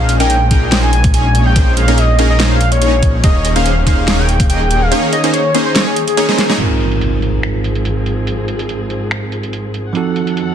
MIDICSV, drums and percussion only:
0, 0, Header, 1, 2, 480
1, 0, Start_track
1, 0, Key_signature, -4, "major"
1, 0, Tempo, 419580
1, 1783, Time_signature, 4, 2, 24, 8
1, 12067, End_track
2, 0, Start_track
2, 0, Title_t, "Drums"
2, 101, Note_on_c, 9, 42, 64
2, 216, Note_off_c, 9, 42, 0
2, 229, Note_on_c, 9, 42, 66
2, 341, Note_off_c, 9, 42, 0
2, 341, Note_on_c, 9, 42, 74
2, 456, Note_off_c, 9, 42, 0
2, 581, Note_on_c, 9, 42, 60
2, 583, Note_on_c, 9, 36, 62
2, 696, Note_off_c, 9, 42, 0
2, 697, Note_off_c, 9, 36, 0
2, 822, Note_on_c, 9, 38, 120
2, 822, Note_on_c, 9, 42, 77
2, 937, Note_off_c, 9, 38, 0
2, 937, Note_off_c, 9, 42, 0
2, 1063, Note_on_c, 9, 42, 64
2, 1177, Note_off_c, 9, 42, 0
2, 1190, Note_on_c, 9, 42, 63
2, 1191, Note_on_c, 9, 36, 112
2, 1302, Note_off_c, 9, 42, 0
2, 1302, Note_on_c, 9, 42, 80
2, 1305, Note_off_c, 9, 36, 0
2, 1417, Note_off_c, 9, 42, 0
2, 1542, Note_on_c, 9, 42, 63
2, 1657, Note_off_c, 9, 42, 0
2, 1783, Note_on_c, 9, 36, 116
2, 1783, Note_on_c, 9, 42, 80
2, 1897, Note_off_c, 9, 42, 0
2, 1898, Note_off_c, 9, 36, 0
2, 2024, Note_on_c, 9, 42, 67
2, 2139, Note_off_c, 9, 42, 0
2, 2151, Note_on_c, 9, 42, 70
2, 2263, Note_off_c, 9, 42, 0
2, 2263, Note_on_c, 9, 42, 77
2, 2377, Note_off_c, 9, 42, 0
2, 2501, Note_on_c, 9, 42, 60
2, 2616, Note_off_c, 9, 42, 0
2, 2742, Note_on_c, 9, 38, 112
2, 2742, Note_on_c, 9, 42, 77
2, 2856, Note_off_c, 9, 38, 0
2, 2856, Note_off_c, 9, 42, 0
2, 2982, Note_on_c, 9, 42, 67
2, 3096, Note_off_c, 9, 42, 0
2, 3109, Note_on_c, 9, 42, 67
2, 3221, Note_off_c, 9, 42, 0
2, 3221, Note_on_c, 9, 42, 84
2, 3336, Note_off_c, 9, 42, 0
2, 3461, Note_on_c, 9, 42, 68
2, 3464, Note_on_c, 9, 36, 61
2, 3576, Note_off_c, 9, 42, 0
2, 3578, Note_off_c, 9, 36, 0
2, 3702, Note_on_c, 9, 42, 85
2, 3703, Note_on_c, 9, 36, 120
2, 3817, Note_off_c, 9, 42, 0
2, 3818, Note_off_c, 9, 36, 0
2, 3943, Note_on_c, 9, 42, 68
2, 4058, Note_off_c, 9, 42, 0
2, 4071, Note_on_c, 9, 42, 74
2, 4183, Note_off_c, 9, 42, 0
2, 4183, Note_on_c, 9, 42, 80
2, 4297, Note_off_c, 9, 42, 0
2, 4424, Note_on_c, 9, 36, 59
2, 4424, Note_on_c, 9, 42, 64
2, 4538, Note_off_c, 9, 36, 0
2, 4538, Note_off_c, 9, 42, 0
2, 4664, Note_on_c, 9, 38, 114
2, 4664, Note_on_c, 9, 42, 80
2, 4778, Note_off_c, 9, 38, 0
2, 4778, Note_off_c, 9, 42, 0
2, 4904, Note_on_c, 9, 42, 68
2, 5019, Note_off_c, 9, 42, 0
2, 5032, Note_on_c, 9, 36, 107
2, 5033, Note_on_c, 9, 42, 69
2, 5145, Note_off_c, 9, 42, 0
2, 5145, Note_on_c, 9, 42, 82
2, 5146, Note_off_c, 9, 36, 0
2, 5259, Note_off_c, 9, 42, 0
2, 5384, Note_on_c, 9, 42, 70
2, 5499, Note_off_c, 9, 42, 0
2, 5625, Note_on_c, 9, 42, 85
2, 5739, Note_off_c, 9, 42, 0
2, 5865, Note_on_c, 9, 42, 71
2, 5979, Note_off_c, 9, 42, 0
2, 5992, Note_on_c, 9, 42, 73
2, 6105, Note_off_c, 9, 42, 0
2, 6105, Note_on_c, 9, 42, 85
2, 6220, Note_off_c, 9, 42, 0
2, 6344, Note_on_c, 9, 42, 63
2, 6458, Note_off_c, 9, 42, 0
2, 6584, Note_on_c, 9, 38, 114
2, 6584, Note_on_c, 9, 42, 86
2, 6699, Note_off_c, 9, 38, 0
2, 6699, Note_off_c, 9, 42, 0
2, 6823, Note_on_c, 9, 42, 73
2, 6938, Note_off_c, 9, 42, 0
2, 6951, Note_on_c, 9, 42, 67
2, 7063, Note_off_c, 9, 42, 0
2, 7063, Note_on_c, 9, 42, 88
2, 7178, Note_off_c, 9, 42, 0
2, 7192, Note_on_c, 9, 38, 53
2, 7304, Note_off_c, 9, 38, 0
2, 7304, Note_on_c, 9, 38, 83
2, 7304, Note_on_c, 9, 42, 71
2, 7418, Note_off_c, 9, 38, 0
2, 7418, Note_off_c, 9, 42, 0
2, 7431, Note_on_c, 9, 38, 84
2, 7543, Note_on_c, 9, 42, 79
2, 7543, Note_on_c, 9, 49, 83
2, 7545, Note_off_c, 9, 38, 0
2, 7657, Note_off_c, 9, 42, 0
2, 7657, Note_off_c, 9, 49, 0
2, 7783, Note_on_c, 9, 42, 64
2, 7897, Note_off_c, 9, 42, 0
2, 7912, Note_on_c, 9, 42, 66
2, 8024, Note_off_c, 9, 42, 0
2, 8024, Note_on_c, 9, 42, 77
2, 8139, Note_off_c, 9, 42, 0
2, 8263, Note_on_c, 9, 42, 57
2, 8378, Note_off_c, 9, 42, 0
2, 8504, Note_on_c, 9, 26, 91
2, 8504, Note_on_c, 9, 42, 75
2, 8618, Note_off_c, 9, 26, 0
2, 8618, Note_off_c, 9, 42, 0
2, 8744, Note_on_c, 9, 42, 67
2, 8858, Note_off_c, 9, 42, 0
2, 8871, Note_on_c, 9, 42, 62
2, 8982, Note_off_c, 9, 42, 0
2, 8982, Note_on_c, 9, 42, 79
2, 9097, Note_off_c, 9, 42, 0
2, 9222, Note_on_c, 9, 42, 65
2, 9337, Note_off_c, 9, 42, 0
2, 9463, Note_on_c, 9, 42, 77
2, 9577, Note_off_c, 9, 42, 0
2, 9702, Note_on_c, 9, 42, 62
2, 9817, Note_off_c, 9, 42, 0
2, 9830, Note_on_c, 9, 42, 64
2, 9943, Note_off_c, 9, 42, 0
2, 9943, Note_on_c, 9, 42, 75
2, 10057, Note_off_c, 9, 42, 0
2, 10182, Note_on_c, 9, 42, 56
2, 10297, Note_off_c, 9, 42, 0
2, 10423, Note_on_c, 9, 26, 91
2, 10423, Note_on_c, 9, 42, 72
2, 10537, Note_off_c, 9, 26, 0
2, 10537, Note_off_c, 9, 42, 0
2, 10664, Note_on_c, 9, 42, 62
2, 10778, Note_off_c, 9, 42, 0
2, 10792, Note_on_c, 9, 42, 61
2, 10903, Note_off_c, 9, 42, 0
2, 10903, Note_on_c, 9, 42, 75
2, 11018, Note_off_c, 9, 42, 0
2, 11144, Note_on_c, 9, 42, 61
2, 11258, Note_off_c, 9, 42, 0
2, 11383, Note_on_c, 9, 42, 77
2, 11497, Note_off_c, 9, 42, 0
2, 11623, Note_on_c, 9, 42, 58
2, 11737, Note_off_c, 9, 42, 0
2, 11750, Note_on_c, 9, 42, 63
2, 11864, Note_off_c, 9, 42, 0
2, 11864, Note_on_c, 9, 42, 70
2, 11978, Note_off_c, 9, 42, 0
2, 12067, End_track
0, 0, End_of_file